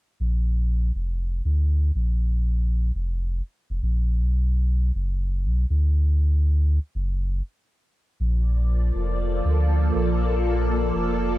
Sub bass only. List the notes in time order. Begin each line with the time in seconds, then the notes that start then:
0.20 A#1
0.95 F1
1.45 D2
1.95 A#1
2.95 F1
3.70 F1
3.82 A#1
4.20 B1
4.95 F#1
5.45 B1
5.70 D2
6.95 F#1
8.20 A#1
8.95 F1
9.45 D2
9.95 A#1
10.95 F1